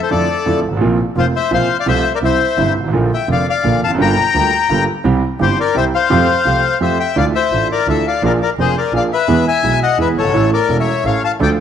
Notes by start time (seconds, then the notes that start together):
0.03 A4 C5
0.11 F2 D3 F3 A3 E4 A4 D5
0.46 F2 D3 F3 A3 E4
0.65 G1 G#1
0.73 G#1
0.77 A1
0.81 A#1 A#2 C3 F3 A#3 F4
1.15 F1 F2 C3 F3 A#3 F4 C5
1.36 C5 E5
1.51 A#1 A#2 C3 F3 A#3 F4 C5 F5
1.80 D5 F5
1.86 C2 C3 F3 A3 F4 C5 E5
2.15 A#4 D5
2.22 C2 C3 E3 G3 E4 C5 E5
2.57 G1 G2 C3 E3 G3 E4
2.76 G#1
2.80 G1 G#1
2.88 A1
2.93 A#1 A#2 D3 F3 A#3 F4
3.14 E5 G5
3.28 F1 F2 D3 F3 A#3 F4 D5
3.32 F5
3.49 D5 F5
3.64 A#1 A#2 D3 F3 A#3 F4
3.82 F1 F5 A5
3.86 E2
3.90 F2
3.95 G1 F#2 D3 G3 A#3
3.99 G1 G2 F4 G5 A#5
4.34 D2 D3 G3 A#3 F4
4.70 G1 G2 D3 G3 A#3 F4
5.04 C2 C3 E3 G3 C4 G4
5.39 G1 G2 E3 G3 C4 G4 C5
5.60 A#4 D5
5.75 C2 C3 E3 G3 C4 G4 C5 E5
5.95 C5 F5
6.10 F2 F3 A3 C4 G4
6.45 C2 C3 F3 A3 C4 G4
6.80 F2 F3 A3 C4 G4 C5 E5
6.99 E5 G5
7.16 D2 D3 E3 A3 D4 F4 D5 F5
7.35 C5 E5
7.52 A1 A2 E3 A3 D4 F4
7.72 A#4 D5
7.87 D2 D3 E3 A3 D4 F4 A4 E5
8.07 D5 F5
8.22 A#1 A#2 F3 A#3 D4 G#4 A#4 D5
8.42 A#4 D5
8.57 F1 F2 F3 A#3 D4 G#4 C5
8.78 A#4 D5
8.93 A#1 A#2 F3 A#3 D4 G#4 F5
8.97 D5
9.13 B4 E5
9.28 E2 E3 G#3 B3 G#4
9.48 E5 G#5
9.63 B1 B2 E3 G#3 B3 G#4
9.83 D#5 F#5
9.98 E2 E3 G#3 B3 G#4 B4 E5
10.17 F#1 G1 A4 C#5
10.24 G1
10.29 G#1
10.33 A1 A2 E3 A3 C#4 A4
10.53 A#4 D5
10.69 E1 E2 E3 A3 C#4 A4
10.80 C#5 E5
11.04 A1 A2 E3 A3 C#4 A4 C#5 F5
11.24 F5 A5
11.39 D2 D3 F3 A3 D4 A4 D5 G5